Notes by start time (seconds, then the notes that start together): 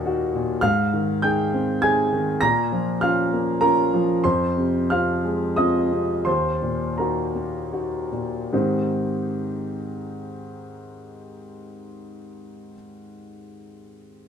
Already playing: D#2 A#2 A#3 D#4 F#4 D#5 D#6
0.05 D#4 F#4
0.35 A#2
0.61 G#2 F5 F6
0.94 D#3
1.22 D#4 G#4 G5 G6
1.54 C4
1.82 D#4 G#4 G#5 G#6
2.13 D#3
2.41 A#2 A#5 A#6
2.72 F3
3.01 C#4 F4 F5 F6
3.33 A#3
3.61 C#4 F4 A#4 A#5
3.94 F3
4.24 F2 C5 C6
4.57 C3
4.90 C4 F4 F5 F6
5.25 G#3
5.56 C4 F4 D#5 D#6
5.91 C3
6.25 D#2 C5 C6
6.62 A#2
6.98 D#4 F#4 A#4 A#5
7.35 A#3
7.73 D#4 F#4
8.13 A#2
8.53 G#2 D#3 C4 D#4 G4 C5